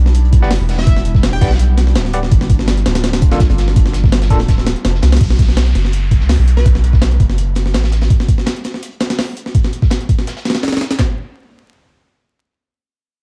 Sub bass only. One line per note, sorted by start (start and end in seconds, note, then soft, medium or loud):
0.00 0.44 B1 loud
0.42 0.59 F#1 loud
0.60 1.40 E1 loud
1.41 1.97 B1 loud
1.96 2.30 D1 medium
2.32 2.85 G1 loud
2.86 3.33 D1 loud
3.31 3.48 A1 loud
3.50 4.29 G1 loud
4.31 4.75 D1 loud
4.85 5.01 F1 medium
5.03 5.19 C2 loud
5.75 6.22 F#1 loud
6.21 6.37 C#2 loud
6.39 7.18 B1 loud
7.20 7.76 F#1 loud
7.74 8.09 A1 medium